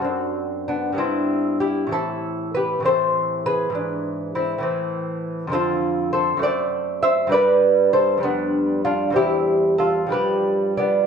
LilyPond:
<<
  \new Staff \with { instrumentName = "Lute" } { \time 6/8 \key a \dorian \tempo 4. = 66 <fis' a'>4 <b d'>8 <c' e'>4 <e' g'>8 | <e' a'>4 <g' b'>8 <a' c''>4 <aes' b'>8~ | <aes' b'>4 <c' e'>8 r4. | \key g \mixolydian <f' a'>4 <a' c''>8 <a' d''>4 <c'' e''>8 |
<b' d''>4 <a' c''>8 <b d'>4 <d' f'>8 | <e' g'>4 <f' a'>8 <g' b'>4 <b d'>8 | }
  \new Staff \with { instrumentName = "Lute" } { \clef bass \time 6/8 \key a \dorian <fis, c' d'>4. <g, b d'>4. | <a, e c'>4. <a, e c'>4. | <gis, e d'>4. <a, e c'>4. | \key g \mixolydian <f, d c'>4. <fis, a c'>4. |
<g, g b>4. <f, g>4. | <e, g c'>4. <g, f g>4. | }
>>